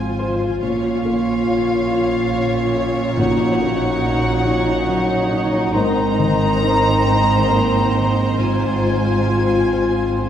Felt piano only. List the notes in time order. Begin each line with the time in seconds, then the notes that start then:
Already playing: G#2 F3 G#3 F4 C5
0.20 F4 C5
0.62 A#2
1.05 A#3
1.48 F4 C#5
1.91 F4 C#5
2.33 F3
2.76 F4 C#5
3.19 A#2
3.61 A#3
4.04 D#4 C#5
4.46 D#4 C#5
4.89 F#3
5.32 D#4 C#5
5.76 G#2
6.19 D#3
6.63 D#4 C5
7.06 D#4 C5
7.50 A#3
7.94 D#4 C5
8.38 G#2
8.84 G#3
9.29 F4 C5
9.72 F4 C5
10.17 C4